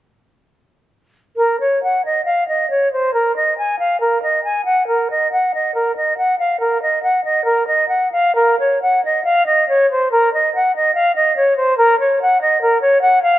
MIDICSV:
0, 0, Header, 1, 2, 480
1, 0, Start_track
1, 0, Key_signature, -5, "minor"
1, 0, Tempo, 966184
1, 676, Time_signature, 4, 2, 24, 8
1, 676, Tempo, 899550
1, 1156, Tempo, 864553
1, 4036, Tempo, 899550
1, 4996, Tempo, 837989
1, 7368, End_track
2, 0, Start_track
2, 0, Title_t, "Flute"
2, 0, Program_c, 0, 73
2, 676, Note_on_c, 0, 70, 69
2, 799, Note_off_c, 0, 70, 0
2, 802, Note_on_c, 0, 73, 56
2, 920, Note_off_c, 0, 73, 0
2, 926, Note_on_c, 0, 78, 53
2, 1040, Note_off_c, 0, 78, 0
2, 1043, Note_on_c, 0, 75, 56
2, 1146, Note_off_c, 0, 75, 0
2, 1149, Note_on_c, 0, 77, 58
2, 1269, Note_off_c, 0, 77, 0
2, 1278, Note_on_c, 0, 75, 53
2, 1393, Note_off_c, 0, 75, 0
2, 1400, Note_on_c, 0, 73, 56
2, 1515, Note_off_c, 0, 73, 0
2, 1525, Note_on_c, 0, 72, 55
2, 1638, Note_off_c, 0, 72, 0
2, 1641, Note_on_c, 0, 70, 69
2, 1757, Note_off_c, 0, 70, 0
2, 1766, Note_on_c, 0, 75, 55
2, 1880, Note_off_c, 0, 75, 0
2, 1887, Note_on_c, 0, 80, 53
2, 2000, Note_off_c, 0, 80, 0
2, 2003, Note_on_c, 0, 77, 55
2, 2118, Note_off_c, 0, 77, 0
2, 2122, Note_on_c, 0, 70, 60
2, 2237, Note_off_c, 0, 70, 0
2, 2246, Note_on_c, 0, 75, 58
2, 2359, Note_off_c, 0, 75, 0
2, 2365, Note_on_c, 0, 80, 56
2, 2477, Note_off_c, 0, 80, 0
2, 2481, Note_on_c, 0, 78, 63
2, 2598, Note_off_c, 0, 78, 0
2, 2605, Note_on_c, 0, 70, 69
2, 2721, Note_off_c, 0, 70, 0
2, 2734, Note_on_c, 0, 75, 52
2, 2846, Note_off_c, 0, 75, 0
2, 2853, Note_on_c, 0, 78, 59
2, 2965, Note_off_c, 0, 78, 0
2, 2977, Note_on_c, 0, 75, 52
2, 3085, Note_off_c, 0, 75, 0
2, 3088, Note_on_c, 0, 70, 60
2, 3203, Note_off_c, 0, 70, 0
2, 3210, Note_on_c, 0, 75, 54
2, 3324, Note_off_c, 0, 75, 0
2, 3327, Note_on_c, 0, 78, 62
2, 3442, Note_off_c, 0, 78, 0
2, 3447, Note_on_c, 0, 77, 62
2, 3560, Note_off_c, 0, 77, 0
2, 3563, Note_on_c, 0, 70, 68
2, 3678, Note_off_c, 0, 70, 0
2, 3686, Note_on_c, 0, 75, 59
2, 3798, Note_off_c, 0, 75, 0
2, 3802, Note_on_c, 0, 78, 57
2, 3916, Note_off_c, 0, 78, 0
2, 3922, Note_on_c, 0, 75, 54
2, 4030, Note_off_c, 0, 75, 0
2, 4033, Note_on_c, 0, 70, 71
2, 4148, Note_off_c, 0, 70, 0
2, 4154, Note_on_c, 0, 75, 60
2, 4264, Note_off_c, 0, 75, 0
2, 4267, Note_on_c, 0, 78, 58
2, 4389, Note_off_c, 0, 78, 0
2, 4393, Note_on_c, 0, 77, 68
2, 4514, Note_off_c, 0, 77, 0
2, 4517, Note_on_c, 0, 70, 72
2, 4640, Note_off_c, 0, 70, 0
2, 4647, Note_on_c, 0, 73, 56
2, 4763, Note_off_c, 0, 73, 0
2, 4767, Note_on_c, 0, 78, 68
2, 4879, Note_off_c, 0, 78, 0
2, 4889, Note_on_c, 0, 75, 59
2, 4988, Note_off_c, 0, 75, 0
2, 4992, Note_on_c, 0, 77, 76
2, 5113, Note_off_c, 0, 77, 0
2, 5118, Note_on_c, 0, 75, 66
2, 5238, Note_off_c, 0, 75, 0
2, 5247, Note_on_c, 0, 73, 66
2, 5364, Note_off_c, 0, 73, 0
2, 5375, Note_on_c, 0, 72, 66
2, 5489, Note_off_c, 0, 72, 0
2, 5492, Note_on_c, 0, 70, 78
2, 5608, Note_off_c, 0, 70, 0
2, 5619, Note_on_c, 0, 75, 61
2, 5731, Note_off_c, 0, 75, 0
2, 5742, Note_on_c, 0, 78, 59
2, 5853, Note_off_c, 0, 78, 0
2, 5860, Note_on_c, 0, 75, 60
2, 5963, Note_off_c, 0, 75, 0
2, 5966, Note_on_c, 0, 77, 81
2, 6085, Note_off_c, 0, 77, 0
2, 6088, Note_on_c, 0, 75, 70
2, 6205, Note_off_c, 0, 75, 0
2, 6207, Note_on_c, 0, 73, 65
2, 6320, Note_off_c, 0, 73, 0
2, 6324, Note_on_c, 0, 72, 71
2, 6439, Note_off_c, 0, 72, 0
2, 6443, Note_on_c, 0, 70, 85
2, 6560, Note_off_c, 0, 70, 0
2, 6570, Note_on_c, 0, 73, 64
2, 6683, Note_off_c, 0, 73, 0
2, 6696, Note_on_c, 0, 78, 75
2, 6805, Note_off_c, 0, 78, 0
2, 6808, Note_on_c, 0, 75, 64
2, 6920, Note_off_c, 0, 75, 0
2, 6923, Note_on_c, 0, 70, 75
2, 7034, Note_off_c, 0, 70, 0
2, 7038, Note_on_c, 0, 73, 75
2, 7149, Note_off_c, 0, 73, 0
2, 7152, Note_on_c, 0, 78, 76
2, 7271, Note_off_c, 0, 78, 0
2, 7273, Note_on_c, 0, 77, 74
2, 7368, Note_off_c, 0, 77, 0
2, 7368, End_track
0, 0, End_of_file